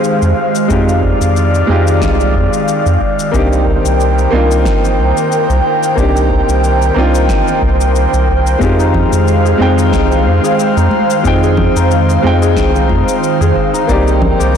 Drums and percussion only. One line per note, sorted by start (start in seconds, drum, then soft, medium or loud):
0.04 shaker medium
0.22 shaker soft
0.55 shaker medium
0.70 kick loud
0.70 shaker medium
0.89 shaker soft
1.03 kick medium
1.22 shaker medium
1.37 shaker soft
1.55 shaker soft
1.88 shaker medium
2.02 kick loud
2.02 snare medium
2.02 shaker medium
2.20 shaker soft
2.35 kick loud
2.53 shaker medium
2.68 shaker medium
2.86 shaker soft
3.01 kick medium
3.19 shaker medium
3.34 kick loud
3.34 shaker medium
3.53 shaker soft
3.67 kick loud
3.85 shaker medium
4.00 shaker soft
4.18 shaker soft
4.51 shaker medium
4.65 kick loud
4.65 snare medium
4.65 shaker medium
4.85 shaker soft
5.17 shaker medium
5.32 shaker medium
5.50 shaker soft
5.83 shaker medium
5.97 kick loud
5.97 shaker soft
6.17 shaker soft
6.30 kick medium
6.49 shaker medium
6.64 shaker medium
6.82 shaker soft
7.15 shaker medium
7.29 kick loud
7.29 snare medium
7.29 shaker medium
7.48 shaker soft
7.62 kick loud
7.81 shaker medium
7.96 shaker medium
8.14 shaker soft
8.28 kick medium
8.47 shaker medium
8.61 kick loud
8.61 shaker soft
8.80 shaker soft
8.94 kick medium
8.94 low conga medium
9.13 shaker medium
9.28 shaker soft
9.46 shaker soft
9.79 shaker medium
9.93 kick loud
9.93 snare medium
9.93 shaker soft
10.12 shaker soft
10.45 shaker medium
10.60 shaker medium
10.78 shaker soft
10.91 high conga medium
11.10 shaker medium
11.25 kick loud
11.25 shaker soft
11.43 shaker soft
11.57 kick medium
11.57 low conga medium
11.77 shaker medium
11.91 shaker soft
12.10 shaker soft
12.24 high conga medium
12.43 shaker medium
12.57 kick loud
12.57 snare medium
12.57 shaker medium
12.76 shaker soft
12.89 kick loud
12.89 high conga medium
13.09 shaker medium
13.24 shaker soft
13.42 shaker soft
13.56 kick medium
13.75 shaker medium
13.89 kick loud
13.89 shaker soft
14.08 shaker soft
14.22 kick medium
14.22 low conga loud
14.41 shaker medium